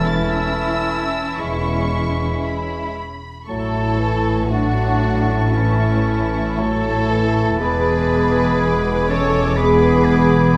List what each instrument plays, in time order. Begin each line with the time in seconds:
Already playing: double bass section E1, cello section E2, french horn section E3, bassoon A3, clarinet C#4, viola section C#4, violin section E4, flute section E5, oboe A5
0.07 violin section A6
0.34 violin section E6
1.38 double bass section E1, cello section E2, bassoon G#3, oboe B5, violin section C#6
2.44 violin section B5
3.48 double bass section A1, cello section A2, bassoon F#3, french horn section A3, clarinet E4, viola section E4, violin section A4 C#6, oboe A5, flute section A5
4.00 bassoon E3
4.51 french horn section F#3, bassoon A3, clarinet D4, viola section D4, violin section F#4, flute section F#5, oboe A5
5.52 french horn section E3, clarinet C#4, viola section C#4, violin section E4, flute section E5
6.59 bassoon F#3, french horn section A3, viola section E4, clarinet E4, violin section A4, flute section A5, oboe A5
7.11 bassoon E3
7.60 double bass section E1, cello section E2, bassoon G#3, french horn section B3, clarinet G#4, viola section G#4, violin section B4 D6, flute section B5
8.61 oboe G#5
9.09 french horn section C#4, viola section A4, clarinet A4, violin section C#5, flute section C#6
9.56 french horn section B3, viola section G#4, clarinet G#4, violin section B4, oboe B5, flute section B5
10.05 oboe G#5